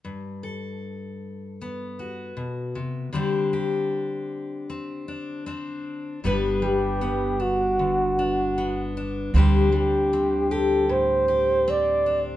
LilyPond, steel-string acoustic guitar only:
\new Staff \with { instrumentName = "Steel-string acoustic guitar" } { \time 4/4 \key g \major \tempo 4 = 78 << { r8 a'4. b8 fis'4. | <g c' d' g'>8 g'4. c'8 d'8 <c' d'>4 | <g b d' b'>4 b8 d'4 d'8 b8 d'8 | <g c' d' g'>4 c'8 g'4 g'8 c'8 d'8 | } \\ { g,2. b,8 c8 | d1 | g,8 g4. d2 | d8 g4. a,2 | } >> }